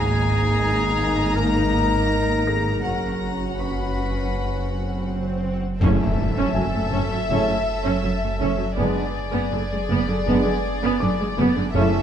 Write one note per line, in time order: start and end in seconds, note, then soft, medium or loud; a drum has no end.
0.00 2.81 G#1 medium
0.00 2.85 G#1 medium
0.00 2.81 G#2 medium
0.00 2.81 A#3 medium
0.00 2.82 A#3 medium
0.00 2.81 D#4 medium
0.00 2.82 D#4 medium
0.00 1.38 G#4 loud
0.00 1.34 G#5 medium
0.00 2.81 A#5 medium
1.36 2.83 A#4 medium
1.36 2.82 A#5 medium
2.47 4.66 G#4 soft
2.47 4.66 A#6 soft
2.83 5.80 F#1 medium
2.83 5.57 F#1 soft
2.83 5.57 F#2 soft
2.83 5.45 F#3 soft
2.83 5.57 C#4 soft
2.83 5.45 C#4 soft
2.83 5.57 F#4 soft
2.83 3.31 A#4 medium
2.83 5.57 F#5 soft
2.83 3.57 A#5 medium
2.83 swell soft
3.58 5.03 B4 medium
3.58 5.07 B5 soft
3.58 5.78 C#6 soft
5.80 11.70 F#1 medium
5.80 5.89 F#1 medium
5.80 6.88 F#2 loud
5.80 5.88 F#2 medium
5.80 6.08 C#3 medium
5.80 6.08 A3 medium
5.80 5.99 C#4 medium
5.80 6.08 C#4 medium
5.80 6.08 E4 medium
5.80 8.73 A4 medium
5.80 8.73 E5 medium
5.80 impact medium
6.37 6.44 F#2 medium
6.37 6.55 C#4 medium
6.55 6.63 F#1 soft
6.55 6.63 F#2 medium
6.55 6.63 F#3 medium
6.55 8.73 G#5 soft
6.74 6.81 F#2 medium
6.74 6.82 A3 soft
6.91 7.00 F#1 medium
6.91 6.99 F#2 medium
6.91 7.09 C#4 medium
7.11 7.18 F#2 soft
7.11 7.19 F#3 soft
7.28 7.37 F#1 medium
7.28 7.36 F#2 medium
7.28 7.56 C#3 medium
7.28 7.56 A3 medium
7.28 7.56 C#4 medium
7.28 7.47 C#4 medium
7.28 7.56 E4 medium
7.48 7.56 F#2 medium
7.48 7.55 F#3 soft
7.84 7.92 F#2 medium
7.84 8.02 C#4 medium
8.03 8.11 F#1 soft
8.03 8.11 F#2 medium
8.03 8.10 F#3 medium
8.22 8.29 F#2 medium
8.22 8.30 A3 medium
8.39 8.49 F#1 medium
8.39 8.48 F#2 medium
8.39 8.57 C#4 medium
8.58 8.67 F#2 medium
8.58 8.66 F#3 medium
8.76 8.86 F#1 medium
8.76 8.85 F#2 medium
8.76 9.04 D3 medium
8.76 9.04 G#3 medium
8.76 8.94 B3 medium
8.76 9.04 B3 medium
8.76 9.05 D4 medium
8.76 11.70 G#4 medium
8.76 11.70 D5 medium
9.32 9.40 F#2 medium
9.32 9.50 B3 medium
9.52 9.59 F#1 medium
9.52 9.59 F#2 medium
9.52 9.59 D3 medium
9.71 9.78 F#2 medium
9.71 9.79 G#3 medium
9.89 9.97 F#1 medium
9.89 9.97 F#2 medium
9.89 10.06 B3 medium
10.07 10.15 F#2 medium
10.07 10.16 D3 medium
10.26 10.34 F#1 medium
10.26 10.34 F#2 medium
10.26 10.52 D3 medium
10.26 10.52 G#3 medium
10.26 10.44 B3 medium
10.26 10.53 B3 medium
10.26 10.53 D4 medium
10.45 10.52 F#2 medium
10.45 10.52 D3 medium
10.82 10.89 F#2 medium
10.82 10.99 B3 medium
11.00 11.08 F#1 medium
11.00 11.08 F#2 medium
11.00 11.09 D3 medium
11.00 12.03 D6 medium
11.19 11.27 F#2 medium
11.19 11.26 G#3 medium
11.38 11.45 F#1 medium
11.38 11.46 F#2 medium
11.38 11.55 B3 medium
11.56 11.64 F#2 medium
11.56 11.64 D3 medium
11.74 12.03 F#1 loud
11.74 11.83 F#1 medium
11.74 12.03 F#2 loud
11.74 11.82 F#2 medium
11.74 12.01 C#3 medium
11.74 12.00 A3 medium
11.74 11.91 C#4 medium
11.74 12.01 C#4 medium
11.74 12.01 E4 medium
11.74 12.03 A4 medium
11.74 12.03 E5 medium